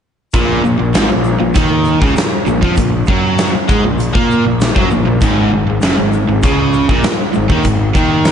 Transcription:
0.32 0.62 A#1 loud
0.32 0.63 A#2 loud
0.32 kick loud
0.32 closed hi-hat medium
0.32 shaker loud
0.64 0.78 A#1 medium
0.64 0.77 A#2 medium
0.64 shaker medium
0.78 0.94 A#1 medium
0.78 0.94 A#2 medium
0.94 1.09 G#1 medium
0.94 1.09 G#2 loud
0.94 snare loud
0.94 closed hi-hat medium
0.94 shaker loud
1.10 1.39 A#1 medium
1.10 1.34 A#2 medium
1.24 shaker medium
1.40 1.55 A#1 medium
1.40 1.55 A#2 medium
1.54 1.98 D#2 loud
1.54 2.00 D#3 medium
1.54 kick medium
1.54 closed hi-hat medium
1.54 shaker medium
1.85 shaker medium
2.02 2.16 C#2 medium
2.02 2.16 C#3 medium
2.02 kick loud
2.02 snare soft
2.16 muted overdriven electric guitar stroke medium
2.16 muted picked electric bass stroke soft
2.16 snare loud
2.16 closed hi-hat medium
2.16 shaker loud
2.47 2.61 A#1 medium
2.47 2.63 A#2 medium
2.47 shaker medium
2.63 2.77 F2 medium
2.63 2.77 F3 medium
2.63 kick loud
2.76 3.06 A#1 medium
2.76 3.02 A#2 medium
2.76 kick loud
2.76 closed hi-hat medium
2.76 shaker loud
3.06 3.51 F#2 loud
3.06 3.53 F#3 loud
3.06 kick medium
3.06 shaker medium
3.38 snare loud
3.38 closed hi-hat medium
3.38 shaker loud
3.55 muted overdriven electric guitar stroke medium
3.55 muted picked electric bass stroke soft
3.68 3.83 G#2 medium
3.68 3.83 G#3 loud
3.68 kick loud
3.68 shaker medium
3.84 4.12 A#1 medium
3.84 4.09 A#2 medium
3.99 closed hi-hat medium
3.99 shaker medium
4.13 4.43 A#2 medium
4.13 4.44 A#3 medium
4.13 kick loud
4.31 shaker medium
4.44 4.74 A#1 medium
4.44 4.69 A#2 medium
4.61 snare loud
4.61 closed hi-hat medium
4.61 shaker loud
4.75 4.90 F#2 medium
4.75 4.90 F#3 medium
4.75 kick medium
4.90 5.03 A#1 medium
4.90 5.06 A#2 medium
4.90 shaker medium
5.04 5.19 A#1 medium
5.04 5.22 A#2 medium
5.21 5.50 G#1 medium
5.21 5.52 G#2 loud
5.21 kick medium
5.21 closed hi-hat medium
5.21 shaker loud
5.51 5.65 G#1 medium
5.51 5.68 G#2 medium
5.66 5.80 G#1 medium
5.66 5.83 G#2 medium
5.81 5.96 F#1 medium
5.81 5.97 F#2 medium
5.81 snare loud
5.81 closed hi-hat medium
5.81 shaker medium
5.97 6.26 G#1 medium
5.97 6.23 G#2 medium
6.12 shaker medium
6.28 6.42 G#1 medium
6.28 6.44 G#2 medium
6.42 6.86 C#2 medium
6.42 6.89 C#3 medium
6.42 kick loud
6.42 closed hi-hat medium
6.42 shaker medium
6.73 shaker medium
6.89 7.04 A#1 medium
6.89 7.04 A#2 loud
6.89 kick medium
7.03 muted picked electric bass stroke soft
7.03 muted overdriven electric guitar stroke medium
7.03 snare loud
7.03 closed hi-hat medium
7.03 shaker loud
7.33 7.49 G#1 medium
7.33 7.50 G#2 medium
7.33 shaker medium
7.50 7.64 D#2 medium
7.50 7.65 D#3 loud
7.50 kick loud
7.63 7.93 G#1 medium
7.63 7.90 G#2 medium
7.63 kick medium
7.63 closed hi-hat medium
7.63 shaker medium
7.95 8.32 D#2 loud
7.95 8.32 D#3 loud
7.95 kick loud
7.95 shaker medium
8.25 snare loud
8.25 closed hi-hat medium
8.25 shaker medium

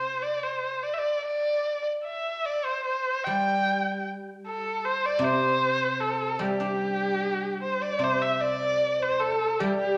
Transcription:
0.00 0.84 C3 soft
0.00 0.23 C5 medium
0.22 0.45 D5 medium
0.43 0.84 C5 medium
0.83 0.95 D5 medium
0.93 1.00 E5 medium
0.98 1.25 D5 medium
1.25 1.83 D5 medium
1.83 1.86 D5 soft
2.05 2.47 E5 medium
2.45 2.66 D5 medium
2.65 2.84 C5 medium
2.85 3.25 C5 medium
3.24 5.60 G3 soft
3.24 4.04 G5 medium
4.46 4.86 A4 medium
4.85 5.07 C5 medium
5.06 5.25 D5 medium
5.19 7.59 C3 medium
5.24 6.02 C5 medium
6.00 6.43 A4 medium
6.39 8.80 G3 soft
6.39 7.61 G4 medium
6.60 8.21 D4 soft
7.61 7.83 C5 medium
7.81 8.04 D5 medium
7.81 8.05 D5 medium
7.99 9.97 C3 soft
7.99 8.19 C5 medium
8.04 8.23 C5 medium
8.20 8.34 E5 medium
8.34 8.42 E5 medium
8.41 9.01 D5 medium
8.41 9.04 D5 medium
9.00 9.23 C5 medium
9.00 9.21 C5 medium
9.20 9.61 A4 medium
9.20 9.60 A4 medium
9.59 9.97 G3 medium
9.59 9.77 G4 medium
9.78 9.97 G4 medium

